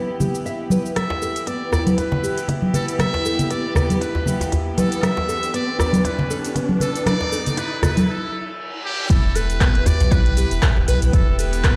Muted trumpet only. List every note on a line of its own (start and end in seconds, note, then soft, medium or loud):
0.96 1.49 E5 loud
1.47 1.72 D5 medium
1.73 1.84 D5 medium
1.98 2.45 B4 medium
2.74 2.86 A4 medium
2.99 3.52 E5 loud
3.51 3.75 D5 loud
3.76 4.00 D5 medium
4.02 4.49 B4 medium
4.78 5.05 A4 loud
5.03 5.54 E5 loud
5.54 5.78 D5 loud
5.79 6.06 D5 loud
6.05 6.56 B4 medium
6.81 7.05 A4 medium
7.07 7.60 D5 loud
7.58 7.83 B4 loud
7.84 8.07 B4 loud
8.09 8.56 A4 medium
8.85 9.08 G4 loud
9.10 9.37 A4 loud
9.36 9.88 B4 loud
9.87 10.13 D5 loud
10.12 10.88 B4 loud
10.88 11.00 B4 medium
11.13 11.37 A4 medium
11.39 11.76 B4 loud